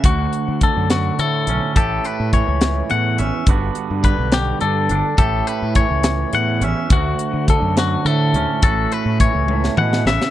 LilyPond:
<<
  \new Staff \with { instrumentName = "Clean electric guitar" } { \time 6/8 \key d \major \tempo 4. = 70 fis'4 a'8 fis'8 a'4 | a'8 b'8 cis''4 fis''8 e''8 | r4 b'8 g'8 a'4 | a'8 b'8 cis''4 fis''8 e''8 |
fis'4 a'8 fis'8 a'4 | a'8 b'8 cis''4 fis''8 e''8 | }
  \new Staff \with { instrumentName = "Clean electric guitar" } { \clef bass \time 6/8 \key d \major << { fis'2~ fis'8 cis'8 | g'2~ g'8 cis'8 | <d b d' fis'>2~ <d b d' fis'>8 d'8 | g'2~ g'8 cis'8 |
fis'2~ fis'8 cis'8 | fis'2. | } \\ { d,4 d4 a,4 | a,4 e4 e,4 | g,4 d4 d4 | a,4 e4 e,4 |
d,4 d4 a,4 | a,4 e8 a,8 b,8 cis8 | } >> }
  \new Staff \with { instrumentName = "Fingered electric bass" } { \clef bass \time 6/8 \key d \major d,8 r16 d8 fis,8. d8 b,,16 r16 | a,,8 r16 a,8 cis,8. a,8 a,,16 r16 | g,,8 r16 g,8 b,,8. g,8 g,,16 r16 | a,,8 r16 a,8 cis,8. a,8 a,,16 r16 |
d,8 r16 d8 fis,8. d8 d,16 r16 | a,,8 r16 a,8 cis,8. a,8 a,,16 r16 | }
  \new DrumStaff \with { instrumentName = "Drums" } \drummode { \time 6/8 <hh bd>8 hh8 <hh bd>8 <hh sn>8 hh8 hh8 | <hh bd>8 hh8 <hh bd>8 <hh sn>8 hh8 hh8 | <hh bd>8 hh8 <hh bd>8 <hh sn>8 hh8 hh8 | <hh bd>8 hh8 <hh bd>8 <hh sn>8 hh8 hh8 |
<hh bd>8 hh8 <hh bd>8 <hh sn>8 hh8 hh8 | <hh bd>8 hh8 <hh bd>8 tommh16 sn16 toml16 sn16 sn16 sn16 | }
>>